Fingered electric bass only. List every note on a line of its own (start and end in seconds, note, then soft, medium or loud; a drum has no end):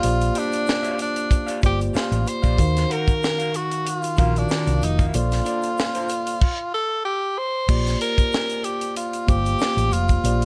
0.04 0.29 A#1 medium
1.63 1.89 G1 medium
1.95 muted fingered electric bass stroke soft
2.12 2.23 A1 medium
2.44 2.55 A#1 medium
2.58 2.84 D#2 loud
4.18 4.44 A#1 medium
4.67 4.79 C2 medium
4.82 5.07 F1 medium
5.14 5.39 A#1 loud
7.69 7.94 A#1 loud
9.29 9.54 G1 medium
9.77 9.89 A1 loud
9.92 10.17 F1 loud
10.24 10.45 A#1 loud